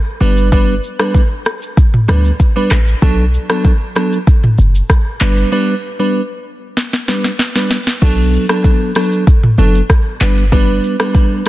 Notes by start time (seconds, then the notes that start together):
0.20 G1 G3 B3 D4 B4, shaker
0.37 shaker
0.52 G3 B3 D4 B4, kick, shaker
0.84 shaker
0.99 G3 B3 D4 B4, cross-stick, shaker
1.14 kick, shaker
1.45 cross-stick, shaker
1.62 shaker
1.77 kick, shaker
1.94 mid tom
2.08 D2 G3 B3 D4 B4, cross-stick, shaker
2.25 shaker
2.40 kick, shaker
2.56 G3 B3 D4 B4
2.71 A1, cross-stick, clap, shaker
2.87 shaker
3.02 B1 F#3 B3 D4 A4, kick, shaker
3.34 shaker
3.50 F#3 B3 D4 A4, cross-stick, shaker
3.65 kick, shaker
3.95 F#3 B3 D4 A4, cross-stick, shaker
4.12 shaker
4.27 kick, shaker
4.44 mid tom
4.58 F#1, shaker
4.75 shaker
4.90 kick, cross-stick, shaker
5.21 G1 G3 B3 D4 B4, clap, shaker
5.37 shaker
5.52 G3 B3 D4 B4
5.99 G3 B3 D4 B4
6.77 snare
6.93 snare
7.08 G3 B3 D4 B4, snare
7.24 snare
7.39 snare
7.55 G3 B3 D4 B4, snare
7.71 snare
7.87 snare
8.02 B1 F#3 B3 D4 A4, kick, crash, shaker
8.34 shaker
8.49 F#3 B3 D4 A4, cross-stick, shaker
8.64 kick, shaker
8.95 F#3 B3 D4 A4, cross-stick, open hi-hat, shaker
9.12 shaker
9.27 kick, shaker
9.43 mid tom
9.58 F#1 F#3 B3 D4 A4, shaker
9.75 shaker
9.90 kick, cross-stick, shaker
10.21 G1 G3 B3 D4 B4, clap, open hi-hat, shaker
10.37 shaker
10.52 G3 B3 D4 B4, kick, shaker
10.84 shaker
10.99 G3 B3 D4 B4, cross-stick, shaker
11.15 kick, shaker
11.46 G3, open hi-hat, shaker